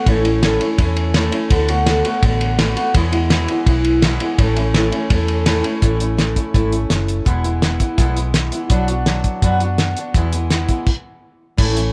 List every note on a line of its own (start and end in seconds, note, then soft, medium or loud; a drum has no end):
0.06 0.58 A1 medium
0.06 0.25 A2 medium
0.06 0.25 E3 medium
0.06 0.25 A3 medium
0.06 0.24 C#4 loud
0.06 0.23 E4 medium
0.06 kick loud
0.06 ride medium
0.24 0.42 A3 medium
0.24 0.43 C#4 medium
0.24 0.42 E4 medium
0.24 ride medium
0.42 0.60 A2 medium
0.42 0.61 E3 medium
0.42 0.60 A3 medium
0.42 0.60 C#4 medium
0.42 0.58 E4 medium
0.42 snare loud
0.42 ride medium
0.60 0.77 A3 medium
0.60 0.78 C#4 medium
0.60 0.78 E4 medium
0.60 ride medium
0.78 1.30 E2 medium
0.78 1.13 E3 medium
0.78 1.13 A3 medium
0.78 1.14 C#4 medium
0.78 1.14 E4 medium
0.78 kick loud
0.78 ride medium
0.96 ride medium
1.14 1.32 A2 medium
1.14 1.33 E3 medium
1.14 1.32 A3 medium
1.14 1.32 C#4 medium
1.14 1.30 E4 medium
1.14 snare loud
1.14 ride medium
1.31 1.50 A3 soft
1.31 1.51 C#4 medium
1.31 1.50 E4 medium
1.31 ride medium
1.50 2.02 D2 medium
1.50 1.68 D3 medium
1.50 1.69 A3 loud
1.50 1.69 B3 loud
1.50 1.68 F#4 loud
1.50 kick loud
1.50 ride medium
1.68 1.87 A3 soft
1.68 1.87 B3 medium
1.68 1.87 F#4 medium
1.68 ride medium
1.86 2.05 D3 medium
1.86 2.05 A3 medium
1.86 2.05 B3 medium
1.86 2.04 F#4 loud
1.86 snare loud
1.86 ride medium
2.05 2.22 A3 medium
2.05 2.23 B3 medium
2.05 2.23 F#4 medium
2.05 ride medium
2.23 2.74 A1 medium
2.23 2.57 D3 medium
2.23 2.58 A3 medium
2.23 2.59 B3 medium
2.23 2.59 F#4 medium
2.23 kick loud
2.23 ride medium
2.41 ride medium
2.59 2.77 D3 medium
2.59 2.77 A3 medium
2.59 2.76 B3 medium
2.59 2.75 F#4 medium
2.59 snare loud
2.59 ride medium
2.76 2.95 A3 medium
2.76 2.95 B3 medium
2.76 2.94 F#4 medium
2.76 ride medium
2.94 3.13 E2 medium
2.94 3.46 E2 medium
2.94 3.13 B2 medium
2.94 3.13 E3 medium
2.94 3.13 G#3 medium
2.94 3.12 B3 loud
2.94 3.11 E4 medium
2.94 kick loud
2.94 ride loud
3.12 3.31 E3 medium
3.12 3.31 G#3 medium
3.12 3.31 B3 medium
3.12 3.30 E4 medium
3.12 ride medium
3.30 3.49 E2 medium
3.30 3.49 B2 medium
3.30 3.49 E3 medium
3.30 3.49 G#3 medium
3.30 3.48 B3 medium
3.30 3.47 E4 loud
3.30 snare loud
3.30 ride medium
3.48 3.66 E3 medium
3.48 3.66 G#3 medium
3.48 3.67 B3 medium
3.48 3.66 E4 medium
3.48 ride medium
3.66 4.17 B1 medium
3.66 4.03 E3 medium
3.66 4.02 G#3 medium
3.66 4.03 B3 medium
3.66 4.04 E4 medium
3.66 kick loud
3.66 ride medium
3.85 ride medium
4.02 4.21 E2 medium
4.02 4.21 B2 medium
4.02 4.21 E3 medium
4.02 4.21 G#3 medium
4.02 4.20 B3 medium
4.02 4.19 E4 medium
4.02 snare loud
4.02 ride medium
4.20 4.38 E3 medium
4.20 4.39 G#3 medium
4.20 4.39 B3 medium
4.20 4.38 E4 medium
4.20 ride medium
4.39 4.90 A1 medium
4.39 4.56 A2 medium
4.39 4.57 E3 medium
4.39 4.57 A3 medium
4.39 4.57 C#4 medium
4.39 4.55 E4 loud
4.39 kick loud
4.39 ride medium
4.56 4.74 A3 soft
4.56 4.75 C#4 medium
4.56 4.74 E4 medium
4.56 ride medium
4.74 4.92 A2 medium
4.74 4.93 E3 medium
4.74 4.92 A3 medium
4.74 4.91 C#4 medium
4.74 4.90 E4 medium
4.74 snare loud
4.74 ride medium
4.92 5.09 A3 soft
4.92 5.10 C#4 medium
4.92 5.10 E4 medium
4.92 ride medium
5.10 5.61 E2 medium
5.10 5.45 E3 medium
5.10 5.45 A3 medium
5.10 5.45 C#4 medium
5.10 5.46 E4 medium
5.10 kick loud
5.10 ride medium
5.28 ride medium
5.46 5.64 A2 medium
5.46 5.64 E3 medium
5.46 5.64 A3 medium
5.46 5.64 C#4 medium
5.46 5.63 E4 medium
5.46 snare loud
5.46 ride medium
5.64 5.81 A3 medium
5.64 5.82 C#4 medium
5.64 5.82 E4 medium
5.64 ride medium
5.82 6.33 A1 medium
5.82 6.00 A2 medium
5.82 6.00 E3 medium
5.82 6.00 A3 medium
5.82 6.00 C#4 medium
5.82 5.98 E4 medium
5.82 kick loud
5.82 closed hi-hat medium
5.99 6.17 A3 soft
5.99 6.17 C#4 soft
5.99 6.18 E4 medium
5.99 closed hi-hat medium
6.17 6.36 E3 medium
6.17 6.36 A3 medium
6.17 6.36 C#4 medium
6.17 6.35 E4 medium
6.17 snare medium
6.17 closed hi-hat medium
6.36 6.53 A3 soft
6.36 6.54 C#4 soft
6.36 6.54 E4 medium
6.36 kick medium
6.36 closed hi-hat soft
6.54 6.85 G#1 medium
6.54 6.72 A2 medium
6.54 6.72 E3 medium
6.54 6.72 A3 medium
6.54 6.72 C#4 medium
6.54 6.71 E4 medium
6.54 kick medium
6.54 closed hi-hat medium
6.72 7.26 A3 soft
6.72 7.26 C#4 soft
6.72 7.26 E4 medium
6.72 closed hi-hat soft
6.90 7.21 F#1 medium
6.90 snare loud
6.90 closed hi-hat medium
7.08 closed hi-hat medium
7.25 7.77 E1 medium
7.25 7.44 E2 medium
7.25 7.44 B2 medium
7.25 7.44 E3 medium
7.25 7.44 G#3 medium
7.25 7.44 B3 medium
7.25 7.43 E4 medium
7.25 kick loud
7.25 closed hi-hat medium
7.44 7.62 E3 soft
7.44 7.62 G#3 soft
7.44 7.63 B3 soft
7.44 7.62 E4 soft
7.44 closed hi-hat medium
7.62 7.81 E3 medium
7.62 7.81 G#3 medium
7.62 7.80 B3 medium
7.62 7.79 E4 medium
7.62 snare medium
7.62 closed hi-hat medium
7.80 7.98 E3 soft
7.80 7.98 G#3 soft
7.80 7.98 B3 soft
7.80 7.99 E4 soft
7.80 kick medium
7.80 closed hi-hat medium
7.98 8.50 B1 medium
7.98 8.17 E2 medium
7.98 8.17 B2 medium
7.98 8.17 E3 medium
7.98 8.17 G#3 medium
7.98 8.16 B3 medium
7.98 8.16 E4 medium
7.98 kick loud
7.98 closed hi-hat medium
8.17 8.53 E3 soft
8.17 8.52 G#3 soft
8.17 8.53 B3 soft
8.17 8.51 E4 medium
8.17 closed hi-hat medium
8.34 snare loud
8.34 closed hi-hat medium
8.52 8.70 E3 soft
8.52 8.70 G#3 soft
8.52 8.70 B3 soft
8.52 8.71 E4 soft
8.52 closed hi-hat medium
8.70 9.21 B1 medium
8.70 8.88 B2 medium
8.70 8.88 F#3 medium
8.70 8.89 B3 medium
8.70 8.88 D4 medium
8.70 8.87 F#4 medium
8.70 kick medium
8.70 closed hi-hat medium
8.88 9.06 B3 soft
8.88 9.07 D4 medium
8.88 9.06 F#4 medium
8.88 closed hi-hat medium
9.06 9.42 F#3 medium
9.06 9.43 B3 medium
9.06 9.43 D4 medium
9.06 9.43 F#4 medium
9.06 snare loud
9.06 closed hi-hat medium
9.24 kick medium
9.24 closed hi-hat medium
9.42 9.93 F#2 medium
9.42 9.61 B2 medium
9.42 9.61 F#3 medium
9.42 9.61 B3 medium
9.42 9.61 D4 medium
9.42 9.60 F#4 loud
9.42 kick medium
9.42 closed hi-hat medium
9.60 9.98 B3 soft
9.60 9.97 D4 soft
9.60 9.96 F#4 medium
9.60 closed hi-hat medium
9.78 snare loud
9.78 closed hi-hat medium
9.97 10.15 B3 soft
9.97 10.16 D4 soft
9.97 10.15 F#4 soft
9.97 closed hi-hat medium
10.14 10.66 E2 medium
10.14 10.33 E2 medium
10.14 10.33 B2 medium
10.14 10.33 E3 medium
10.14 10.33 G#3 medium
10.14 10.32 B3 medium
10.14 10.31 E4 medium
10.14 kick loud
10.14 closed hi-hat medium
10.32 10.49 E3 soft
10.32 10.50 G#3 soft
10.32 10.50 B3 medium
10.32 10.51 E4 soft
10.32 closed hi-hat medium
10.50 10.69 E3 medium
10.50 10.68 G#3 medium
10.50 10.68 B3 medium
10.50 10.67 E4 medium
10.50 snare medium
10.50 closed hi-hat medium
10.69 10.88 E3 soft
10.69 10.87 G#3 soft
10.69 10.87 B3 soft
10.69 10.87 E4 soft
10.69 kick medium
10.69 closed hi-hat medium
10.86 kick medium
10.86 crash medium
11.57 11.93 A1 medium
11.57 11.76 A2 medium
11.57 11.76 E3 medium
11.57 11.77 A3 medium
11.57 11.76 C#4 medium
11.57 11.74 E4 medium
11.57 kick loud
11.57 crash loud
11.75 11.93 A3 soft
11.75 11.93 C#4 medium
11.75 11.93 E4 medium
11.75 closed hi-hat medium